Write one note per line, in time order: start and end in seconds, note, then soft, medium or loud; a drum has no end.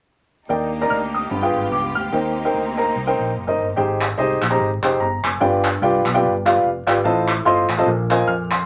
0.48 0.84 D#2 medium
0.48 1.10 D#3 medium
0.48 1.30 A#3 medium
0.48 1.30 D4 medium
0.48 1.30 D#4 medium
0.48 0.69 D#4 medium
0.48 3.74 G4 medium
0.48 0.69 A#4 medium
0.48 0.70 D5 medium
0.48 0.70 G5 medium
0.81 0.98 D#4 medium
0.81 0.98 A#4 medium
0.81 0.99 D5 medium
0.81 0.99 A#5 medium
0.90 1.25 D2 medium
0.90 1.12 F6 medium
1.14 1.53 D#6 medium
1.30 1.51 G1 medium
1.30 1.92 G2 medium
1.30 2.12 G#3 medium
1.30 2.12 B3 medium
1.30 2.12 F4 medium
1.42 1.65 F4 medium
1.42 1.66 G#4 medium
1.42 1.66 B4 medium
1.42 1.66 G5 medium
1.54 1.69 G#1 medium
1.72 1.92 C#2 medium
1.72 1.94 D6 medium
1.95 2.11 D2 medium
1.95 2.34 F6 medium
2.13 2.48 D#2 medium
2.13 2.73 D#3 medium
2.13 3.76 A#3 medium
2.13 3.76 C4 medium
2.13 2.33 D#4 medium
2.13 3.76 D#4 medium
2.13 2.33 A#4 medium
2.13 2.33 C5 medium
2.13 2.33 G5 medium
2.45 2.62 D#4 medium
2.45 2.62 A#4 medium
2.45 2.62 C5 medium
2.45 2.62 G5 medium
2.54 2.89 D2 medium
2.77 2.92 D#4 medium
2.77 2.93 A#4 medium
2.77 2.93 C5 medium
2.77 2.93 A#5 medium
2.96 3.15 C2 loud
3.07 3.30 D#4 medium
3.07 3.30 A#4 medium
3.07 3.30 C5 medium
3.07 3.30 G5 medium
3.19 3.34 A#1 medium
3.37 3.56 F#1 medium
3.47 3.66 D#4 medium
3.47 3.66 A#4 medium
3.47 3.66 C5 medium
3.47 3.66 D#5 medium
3.60 3.75 G1 medium
3.76 4.12 G#1 loud
3.76 4.37 G#2 medium
3.76 4.03 D#4 medium
3.76 4.03 G4 medium
3.76 4.03 G#4 medium
3.76 4.03 C5 medium
3.76 4.03 G5 medium
4.01 clap medium
4.18 4.38 C2 medium
4.18 4.38 D#4 medium
4.18 4.38 G4 medium
4.18 4.38 G#4 medium
4.18 4.38 C5 medium
4.18 4.38 D#5 loud
4.42 4.57 A#1 medium
4.42 clap medium
4.50 4.67 D#4 medium
4.50 4.67 G4 medium
4.50 4.67 G#4 medium
4.50 4.67 C5 medium
4.50 4.68 A#5 medium
4.60 4.79 G#1 medium
4.83 4.97 F1 medium
4.83 5.03 D#4 medium
4.83 5.03 G4 medium
4.83 5.03 G#4 medium
4.83 5.04 C5 medium
4.83 5.01 G5 medium
4.83 clap medium
5.00 5.20 G1 medium
5.00 5.22 A#5 medium
5.24 5.39 F#1 medium
5.24 5.62 G#5 medium
5.24 clap medium
5.40 5.76 G1 medium
5.40 6.01 G2 medium
5.40 5.67 F4 medium
5.40 5.67 G4 medium
5.40 5.67 B4 medium
5.40 5.67 D5 medium
5.40 5.67 G5 medium
5.64 clap loud
5.82 6.02 C2 medium
5.82 6.02 F4 medium
5.82 6.02 G4 medium
5.82 6.02 B4 medium
5.82 6.02 D5 medium
5.82 6.02 G5 loud
6.05 6.24 B1 medium
6.05 clap medium
6.14 6.31 F4 medium
6.14 6.31 G4 medium
6.14 6.31 B4 medium
6.14 6.31 D5 medium
6.14 6.31 G5 loud
6.23 6.58 G1 loud
6.46 6.67 F4 medium
6.46 6.67 G4 medium
6.46 6.67 B4 medium
6.46 6.67 D5 medium
6.46 6.67 F5 loud
6.46 clap medium
6.64 6.84 F1 medium
6.87 7.02 G#1 medium
6.87 6.97 F4 medium
6.87 6.97 G4 medium
6.87 6.97 B4 medium
6.87 6.97 D5 medium
6.87 6.97 G5 loud
6.87 clap medium
7.04 7.39 A1 loud
7.04 7.65 A2 medium
7.04 7.30 F4 medium
7.04 7.31 A4 medium
7.04 7.31 C5 medium
7.04 7.31 D#5 medium
7.04 7.31 A5 loud
7.28 clap loud
7.45 7.66 G1 medium
7.45 7.65 F4 medium
7.45 7.66 A4 medium
7.45 7.66 C5 medium
7.45 7.66 D#5 medium
7.45 7.66 C6 loud
7.69 7.84 A1 medium
7.69 clap medium
7.78 7.87 F4 medium
7.78 7.87 A4 medium
7.78 7.87 C5 medium
7.78 7.87 D#5 medium
7.78 7.87 A5 loud
7.86 8.21 A#1 loud
7.86 8.47 A#2 medium
8.10 8.31 F4 medium
8.10 8.31 A#4 medium
8.10 8.31 C5 medium
8.10 8.31 D#5 medium
8.10 8.31 G#5 loud
8.10 clap medium
8.27 8.62 F2 medium
8.27 8.50 F6 medium
8.51 8.66 C6 medium
8.51 clap medium